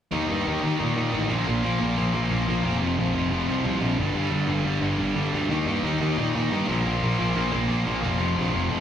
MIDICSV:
0, 0, Header, 1, 3, 480
1, 0, Start_track
1, 0, Key_signature, -2, "major"
1, 0, Tempo, 336889
1, 172, Time_signature, 4, 2, 24, 8
1, 12541, End_track
2, 0, Start_track
2, 0, Title_t, "Distorted electric guitar"
2, 0, Program_c, 0, 30
2, 163, Note_on_c, 0, 51, 94
2, 172, Note_on_c, 0, 58, 94
2, 174, Note_on_c, 0, 63, 95
2, 387, Note_off_c, 0, 63, 0
2, 404, Note_off_c, 0, 51, 0
2, 404, Note_off_c, 0, 58, 0
2, 404, Note_on_c, 0, 63, 84
2, 410, Note_on_c, 0, 58, 77
2, 421, Note_on_c, 0, 51, 60
2, 629, Note_off_c, 0, 51, 0
2, 637, Note_off_c, 0, 63, 0
2, 647, Note_off_c, 0, 58, 0
2, 647, Note_on_c, 0, 51, 75
2, 652, Note_on_c, 0, 58, 76
2, 654, Note_on_c, 0, 63, 79
2, 860, Note_off_c, 0, 63, 0
2, 878, Note_off_c, 0, 51, 0
2, 878, Note_on_c, 0, 63, 76
2, 879, Note_off_c, 0, 58, 0
2, 885, Note_on_c, 0, 58, 78
2, 895, Note_on_c, 0, 51, 76
2, 1113, Note_off_c, 0, 51, 0
2, 1120, Note_off_c, 0, 58, 0
2, 1125, Note_off_c, 0, 63, 0
2, 1130, Note_on_c, 0, 51, 76
2, 1137, Note_on_c, 0, 58, 73
2, 1142, Note_on_c, 0, 63, 80
2, 1340, Note_off_c, 0, 63, 0
2, 1353, Note_off_c, 0, 58, 0
2, 1357, Note_on_c, 0, 63, 75
2, 1362, Note_off_c, 0, 51, 0
2, 1371, Note_on_c, 0, 58, 70
2, 1379, Note_on_c, 0, 51, 72
2, 1584, Note_off_c, 0, 51, 0
2, 1599, Note_off_c, 0, 58, 0
2, 1601, Note_on_c, 0, 51, 79
2, 1606, Note_off_c, 0, 63, 0
2, 1616, Note_on_c, 0, 58, 87
2, 1623, Note_on_c, 0, 63, 95
2, 1829, Note_off_c, 0, 51, 0
2, 1837, Note_off_c, 0, 58, 0
2, 1840, Note_off_c, 0, 63, 0
2, 1841, Note_on_c, 0, 46, 83
2, 1851, Note_on_c, 0, 53, 86
2, 1857, Note_on_c, 0, 58, 92
2, 2072, Note_off_c, 0, 58, 0
2, 2089, Note_on_c, 0, 58, 92
2, 2090, Note_off_c, 0, 46, 0
2, 2097, Note_off_c, 0, 53, 0
2, 2103, Note_on_c, 0, 53, 109
2, 2107, Note_on_c, 0, 46, 83
2, 2303, Note_off_c, 0, 46, 0
2, 2320, Note_on_c, 0, 46, 69
2, 2326, Note_off_c, 0, 58, 0
2, 2329, Note_off_c, 0, 53, 0
2, 2335, Note_on_c, 0, 53, 78
2, 2343, Note_on_c, 0, 58, 81
2, 2536, Note_off_c, 0, 58, 0
2, 2553, Note_on_c, 0, 58, 91
2, 2555, Note_off_c, 0, 46, 0
2, 2561, Note_off_c, 0, 53, 0
2, 2567, Note_on_c, 0, 53, 76
2, 2572, Note_on_c, 0, 46, 73
2, 2790, Note_off_c, 0, 46, 0
2, 2797, Note_off_c, 0, 53, 0
2, 2804, Note_off_c, 0, 58, 0
2, 2807, Note_on_c, 0, 46, 67
2, 2814, Note_on_c, 0, 53, 82
2, 2821, Note_on_c, 0, 58, 82
2, 3018, Note_off_c, 0, 58, 0
2, 3029, Note_off_c, 0, 53, 0
2, 3035, Note_on_c, 0, 58, 80
2, 3036, Note_off_c, 0, 46, 0
2, 3046, Note_on_c, 0, 53, 77
2, 3053, Note_on_c, 0, 46, 69
2, 3252, Note_off_c, 0, 46, 0
2, 3266, Note_off_c, 0, 53, 0
2, 3269, Note_on_c, 0, 46, 76
2, 3272, Note_off_c, 0, 58, 0
2, 3283, Note_on_c, 0, 53, 75
2, 3289, Note_on_c, 0, 58, 84
2, 3496, Note_off_c, 0, 58, 0
2, 3507, Note_off_c, 0, 53, 0
2, 3513, Note_on_c, 0, 58, 103
2, 3519, Note_off_c, 0, 46, 0
2, 3524, Note_on_c, 0, 53, 82
2, 3536, Note_on_c, 0, 46, 77
2, 3738, Note_off_c, 0, 46, 0
2, 3743, Note_off_c, 0, 53, 0
2, 3755, Note_on_c, 0, 46, 76
2, 3756, Note_off_c, 0, 58, 0
2, 3760, Note_on_c, 0, 53, 74
2, 3773, Note_on_c, 0, 58, 82
2, 3986, Note_off_c, 0, 46, 0
2, 3989, Note_off_c, 0, 53, 0
2, 3995, Note_off_c, 0, 58, 0
2, 4005, Note_on_c, 0, 41, 104
2, 4011, Note_on_c, 0, 48, 99
2, 4021, Note_on_c, 0, 53, 106
2, 4228, Note_off_c, 0, 53, 0
2, 4235, Note_off_c, 0, 48, 0
2, 4242, Note_off_c, 0, 41, 0
2, 4245, Note_on_c, 0, 53, 84
2, 4252, Note_on_c, 0, 48, 79
2, 4259, Note_on_c, 0, 41, 58
2, 4448, Note_off_c, 0, 41, 0
2, 4464, Note_off_c, 0, 48, 0
2, 4465, Note_on_c, 0, 41, 71
2, 4471, Note_off_c, 0, 53, 0
2, 4481, Note_on_c, 0, 48, 87
2, 4488, Note_on_c, 0, 53, 88
2, 4706, Note_off_c, 0, 53, 0
2, 4714, Note_off_c, 0, 48, 0
2, 4719, Note_off_c, 0, 41, 0
2, 4723, Note_on_c, 0, 53, 89
2, 4731, Note_on_c, 0, 48, 86
2, 4736, Note_on_c, 0, 41, 71
2, 4934, Note_off_c, 0, 41, 0
2, 4946, Note_off_c, 0, 48, 0
2, 4951, Note_off_c, 0, 53, 0
2, 4951, Note_on_c, 0, 41, 85
2, 4963, Note_on_c, 0, 48, 88
2, 4968, Note_on_c, 0, 53, 90
2, 5172, Note_off_c, 0, 53, 0
2, 5176, Note_off_c, 0, 48, 0
2, 5185, Note_off_c, 0, 41, 0
2, 5189, Note_on_c, 0, 53, 80
2, 5193, Note_on_c, 0, 48, 73
2, 5202, Note_on_c, 0, 41, 72
2, 5403, Note_off_c, 0, 41, 0
2, 5413, Note_off_c, 0, 48, 0
2, 5420, Note_on_c, 0, 41, 85
2, 5423, Note_off_c, 0, 53, 0
2, 5430, Note_on_c, 0, 48, 93
2, 5440, Note_on_c, 0, 53, 97
2, 5659, Note_off_c, 0, 41, 0
2, 5665, Note_off_c, 0, 48, 0
2, 5665, Note_on_c, 0, 43, 93
2, 5670, Note_off_c, 0, 53, 0
2, 5674, Note_on_c, 0, 50, 91
2, 5683, Note_on_c, 0, 55, 101
2, 5891, Note_off_c, 0, 50, 0
2, 5892, Note_off_c, 0, 55, 0
2, 5898, Note_on_c, 0, 55, 105
2, 5899, Note_off_c, 0, 43, 0
2, 5908, Note_on_c, 0, 50, 103
2, 5916, Note_on_c, 0, 43, 96
2, 6123, Note_off_c, 0, 43, 0
2, 6128, Note_off_c, 0, 50, 0
2, 6140, Note_on_c, 0, 43, 80
2, 6145, Note_on_c, 0, 50, 82
2, 6149, Note_off_c, 0, 55, 0
2, 6154, Note_on_c, 0, 55, 76
2, 6370, Note_off_c, 0, 43, 0
2, 6370, Note_off_c, 0, 50, 0
2, 6374, Note_off_c, 0, 55, 0
2, 6380, Note_on_c, 0, 55, 78
2, 6387, Note_on_c, 0, 43, 69
2, 6387, Note_on_c, 0, 50, 71
2, 6598, Note_off_c, 0, 43, 0
2, 6615, Note_off_c, 0, 55, 0
2, 6615, Note_on_c, 0, 43, 74
2, 6617, Note_off_c, 0, 50, 0
2, 6632, Note_on_c, 0, 55, 87
2, 6634, Note_on_c, 0, 50, 74
2, 6848, Note_off_c, 0, 55, 0
2, 6849, Note_off_c, 0, 50, 0
2, 6859, Note_off_c, 0, 43, 0
2, 6865, Note_on_c, 0, 55, 70
2, 6866, Note_on_c, 0, 50, 72
2, 6876, Note_on_c, 0, 43, 75
2, 7072, Note_off_c, 0, 43, 0
2, 7081, Note_off_c, 0, 50, 0
2, 7088, Note_off_c, 0, 55, 0
2, 7089, Note_on_c, 0, 43, 64
2, 7098, Note_on_c, 0, 50, 73
2, 7105, Note_on_c, 0, 55, 86
2, 7326, Note_off_c, 0, 50, 0
2, 7326, Note_off_c, 0, 55, 0
2, 7339, Note_off_c, 0, 43, 0
2, 7343, Note_on_c, 0, 55, 100
2, 7344, Note_on_c, 0, 50, 87
2, 7356, Note_on_c, 0, 43, 89
2, 7565, Note_off_c, 0, 43, 0
2, 7570, Note_off_c, 0, 50, 0
2, 7574, Note_off_c, 0, 55, 0
2, 7582, Note_on_c, 0, 43, 79
2, 7587, Note_on_c, 0, 50, 76
2, 7591, Note_on_c, 0, 55, 87
2, 7822, Note_off_c, 0, 50, 0
2, 7823, Note_off_c, 0, 43, 0
2, 7827, Note_off_c, 0, 55, 0
2, 7827, Note_on_c, 0, 51, 89
2, 7833, Note_on_c, 0, 58, 102
2, 7845, Note_on_c, 0, 63, 108
2, 8054, Note_off_c, 0, 63, 0
2, 8070, Note_off_c, 0, 51, 0
2, 8072, Note_off_c, 0, 58, 0
2, 8072, Note_on_c, 0, 63, 78
2, 8078, Note_on_c, 0, 58, 77
2, 8087, Note_on_c, 0, 51, 63
2, 8300, Note_off_c, 0, 51, 0
2, 8312, Note_off_c, 0, 58, 0
2, 8312, Note_off_c, 0, 63, 0
2, 8317, Note_on_c, 0, 51, 88
2, 8317, Note_on_c, 0, 58, 84
2, 8329, Note_on_c, 0, 63, 96
2, 8542, Note_off_c, 0, 63, 0
2, 8557, Note_off_c, 0, 51, 0
2, 8559, Note_on_c, 0, 63, 78
2, 8564, Note_off_c, 0, 58, 0
2, 8570, Note_on_c, 0, 58, 81
2, 8574, Note_on_c, 0, 51, 72
2, 8785, Note_off_c, 0, 51, 0
2, 8795, Note_off_c, 0, 58, 0
2, 8802, Note_on_c, 0, 51, 79
2, 8805, Note_off_c, 0, 63, 0
2, 8812, Note_on_c, 0, 58, 79
2, 8822, Note_on_c, 0, 63, 85
2, 9022, Note_off_c, 0, 63, 0
2, 9028, Note_off_c, 0, 58, 0
2, 9035, Note_off_c, 0, 51, 0
2, 9039, Note_on_c, 0, 63, 81
2, 9045, Note_on_c, 0, 58, 76
2, 9052, Note_on_c, 0, 51, 68
2, 9269, Note_off_c, 0, 51, 0
2, 9276, Note_off_c, 0, 58, 0
2, 9285, Note_off_c, 0, 63, 0
2, 9286, Note_on_c, 0, 51, 93
2, 9293, Note_on_c, 0, 58, 91
2, 9303, Note_on_c, 0, 63, 94
2, 9501, Note_off_c, 0, 51, 0
2, 9506, Note_off_c, 0, 58, 0
2, 9507, Note_on_c, 0, 46, 94
2, 9518, Note_off_c, 0, 63, 0
2, 9520, Note_on_c, 0, 53, 86
2, 9524, Note_on_c, 0, 58, 93
2, 9739, Note_off_c, 0, 58, 0
2, 9756, Note_on_c, 0, 58, 104
2, 9760, Note_off_c, 0, 46, 0
2, 9760, Note_off_c, 0, 53, 0
2, 9766, Note_on_c, 0, 53, 92
2, 9778, Note_on_c, 0, 46, 95
2, 9989, Note_off_c, 0, 46, 0
2, 10004, Note_off_c, 0, 58, 0
2, 10006, Note_on_c, 0, 46, 69
2, 10010, Note_off_c, 0, 53, 0
2, 10016, Note_on_c, 0, 53, 91
2, 10021, Note_on_c, 0, 58, 85
2, 10225, Note_off_c, 0, 58, 0
2, 10242, Note_on_c, 0, 58, 86
2, 10246, Note_off_c, 0, 46, 0
2, 10246, Note_off_c, 0, 53, 0
2, 10252, Note_on_c, 0, 53, 75
2, 10263, Note_on_c, 0, 46, 64
2, 10453, Note_off_c, 0, 46, 0
2, 10463, Note_off_c, 0, 53, 0
2, 10468, Note_off_c, 0, 58, 0
2, 10470, Note_on_c, 0, 46, 84
2, 10480, Note_on_c, 0, 53, 81
2, 10485, Note_on_c, 0, 58, 81
2, 10696, Note_off_c, 0, 58, 0
2, 10703, Note_off_c, 0, 53, 0
2, 10708, Note_off_c, 0, 46, 0
2, 10713, Note_on_c, 0, 58, 89
2, 10720, Note_on_c, 0, 53, 75
2, 10725, Note_on_c, 0, 46, 72
2, 10929, Note_off_c, 0, 46, 0
2, 10938, Note_off_c, 0, 53, 0
2, 10941, Note_off_c, 0, 58, 0
2, 10946, Note_on_c, 0, 46, 65
2, 10955, Note_on_c, 0, 53, 78
2, 10958, Note_on_c, 0, 58, 71
2, 11164, Note_off_c, 0, 58, 0
2, 11174, Note_off_c, 0, 53, 0
2, 11179, Note_off_c, 0, 46, 0
2, 11181, Note_on_c, 0, 58, 100
2, 11191, Note_on_c, 0, 53, 89
2, 11196, Note_on_c, 0, 46, 81
2, 11417, Note_off_c, 0, 46, 0
2, 11418, Note_off_c, 0, 53, 0
2, 11429, Note_off_c, 0, 58, 0
2, 11434, Note_on_c, 0, 46, 80
2, 11435, Note_on_c, 0, 53, 91
2, 11447, Note_on_c, 0, 58, 82
2, 11660, Note_off_c, 0, 53, 0
2, 11668, Note_off_c, 0, 46, 0
2, 11672, Note_on_c, 0, 41, 90
2, 11674, Note_on_c, 0, 48, 108
2, 11675, Note_off_c, 0, 58, 0
2, 11677, Note_on_c, 0, 53, 109
2, 11893, Note_off_c, 0, 53, 0
2, 11902, Note_off_c, 0, 48, 0
2, 11905, Note_off_c, 0, 41, 0
2, 11910, Note_on_c, 0, 53, 83
2, 11919, Note_on_c, 0, 48, 79
2, 11922, Note_on_c, 0, 41, 79
2, 12142, Note_off_c, 0, 41, 0
2, 12149, Note_off_c, 0, 48, 0
2, 12157, Note_off_c, 0, 53, 0
2, 12159, Note_on_c, 0, 41, 85
2, 12166, Note_on_c, 0, 48, 81
2, 12174, Note_on_c, 0, 53, 86
2, 12383, Note_off_c, 0, 53, 0
2, 12391, Note_off_c, 0, 48, 0
2, 12396, Note_off_c, 0, 41, 0
2, 12400, Note_on_c, 0, 53, 105
2, 12408, Note_on_c, 0, 48, 78
2, 12414, Note_on_c, 0, 41, 66
2, 12541, Note_off_c, 0, 41, 0
2, 12541, Note_off_c, 0, 48, 0
2, 12541, Note_off_c, 0, 53, 0
2, 12541, End_track
3, 0, Start_track
3, 0, Title_t, "Picked electric bass"
3, 0, Program_c, 1, 34
3, 178, Note_on_c, 1, 39, 76
3, 368, Note_off_c, 1, 39, 0
3, 424, Note_on_c, 1, 43, 68
3, 611, Note_off_c, 1, 43, 0
3, 671, Note_on_c, 1, 39, 69
3, 855, Note_off_c, 1, 39, 0
3, 914, Note_on_c, 1, 39, 76
3, 1097, Note_off_c, 1, 39, 0
3, 1154, Note_on_c, 1, 46, 81
3, 1336, Note_off_c, 1, 46, 0
3, 1382, Note_on_c, 1, 46, 86
3, 1569, Note_off_c, 1, 46, 0
3, 1619, Note_on_c, 1, 33, 86
3, 1807, Note_off_c, 1, 33, 0
3, 1862, Note_on_c, 1, 34, 83
3, 2048, Note_off_c, 1, 34, 0
3, 2103, Note_on_c, 1, 34, 86
3, 2289, Note_off_c, 1, 34, 0
3, 2337, Note_on_c, 1, 34, 75
3, 2525, Note_off_c, 1, 34, 0
3, 2585, Note_on_c, 1, 34, 75
3, 2770, Note_off_c, 1, 34, 0
3, 2821, Note_on_c, 1, 34, 80
3, 3007, Note_off_c, 1, 34, 0
3, 3055, Note_on_c, 1, 34, 87
3, 3244, Note_off_c, 1, 34, 0
3, 3276, Note_on_c, 1, 34, 81
3, 3473, Note_off_c, 1, 34, 0
3, 3525, Note_on_c, 1, 34, 87
3, 3718, Note_off_c, 1, 34, 0
3, 3761, Note_on_c, 1, 29, 75
3, 3956, Note_off_c, 1, 29, 0
3, 4007, Note_on_c, 1, 29, 80
3, 4199, Note_off_c, 1, 29, 0
3, 4237, Note_on_c, 1, 34, 78
3, 4434, Note_off_c, 1, 34, 0
3, 4487, Note_on_c, 1, 29, 76
3, 4680, Note_off_c, 1, 29, 0
3, 4713, Note_on_c, 1, 29, 85
3, 4911, Note_off_c, 1, 29, 0
3, 4962, Note_on_c, 1, 36, 84
3, 5157, Note_off_c, 1, 36, 0
3, 5198, Note_on_c, 1, 36, 93
3, 5395, Note_off_c, 1, 36, 0
3, 5434, Note_on_c, 1, 34, 87
3, 5633, Note_off_c, 1, 34, 0
3, 5674, Note_on_c, 1, 31, 76
3, 5873, Note_off_c, 1, 31, 0
3, 5916, Note_on_c, 1, 31, 82
3, 6114, Note_off_c, 1, 31, 0
3, 6156, Note_on_c, 1, 31, 76
3, 6355, Note_off_c, 1, 31, 0
3, 6381, Note_on_c, 1, 31, 80
3, 6586, Note_off_c, 1, 31, 0
3, 6623, Note_on_c, 1, 31, 81
3, 6827, Note_off_c, 1, 31, 0
3, 6856, Note_on_c, 1, 31, 83
3, 7063, Note_off_c, 1, 31, 0
3, 7113, Note_on_c, 1, 31, 83
3, 7313, Note_off_c, 1, 31, 0
3, 7353, Note_on_c, 1, 31, 92
3, 7554, Note_off_c, 1, 31, 0
3, 7602, Note_on_c, 1, 38, 76
3, 7799, Note_off_c, 1, 38, 0
3, 7823, Note_on_c, 1, 39, 77
3, 8028, Note_off_c, 1, 39, 0
3, 8066, Note_on_c, 1, 43, 75
3, 8270, Note_off_c, 1, 43, 0
3, 8310, Note_on_c, 1, 39, 81
3, 8512, Note_off_c, 1, 39, 0
3, 8552, Note_on_c, 1, 39, 80
3, 8753, Note_off_c, 1, 39, 0
3, 8803, Note_on_c, 1, 46, 90
3, 9000, Note_off_c, 1, 46, 0
3, 9053, Note_on_c, 1, 46, 83
3, 9246, Note_off_c, 1, 46, 0
3, 9282, Note_on_c, 1, 43, 86
3, 9479, Note_off_c, 1, 43, 0
3, 9537, Note_on_c, 1, 34, 81
3, 9728, Note_off_c, 1, 34, 0
3, 9782, Note_on_c, 1, 34, 76
3, 9971, Note_off_c, 1, 34, 0
3, 10011, Note_on_c, 1, 34, 75
3, 10205, Note_off_c, 1, 34, 0
3, 10247, Note_on_c, 1, 34, 83
3, 10442, Note_off_c, 1, 34, 0
3, 10486, Note_on_c, 1, 34, 81
3, 10682, Note_off_c, 1, 34, 0
3, 10735, Note_on_c, 1, 34, 96
3, 10927, Note_off_c, 1, 34, 0
3, 10965, Note_on_c, 1, 34, 77
3, 11161, Note_off_c, 1, 34, 0
3, 11214, Note_on_c, 1, 34, 87
3, 11406, Note_off_c, 1, 34, 0
3, 11445, Note_on_c, 1, 29, 80
3, 11640, Note_off_c, 1, 29, 0
3, 11689, Note_on_c, 1, 29, 89
3, 11883, Note_off_c, 1, 29, 0
3, 11935, Note_on_c, 1, 34, 78
3, 12126, Note_off_c, 1, 34, 0
3, 12168, Note_on_c, 1, 29, 87
3, 12361, Note_off_c, 1, 29, 0
3, 12403, Note_on_c, 1, 29, 88
3, 12541, Note_off_c, 1, 29, 0
3, 12541, End_track
0, 0, End_of_file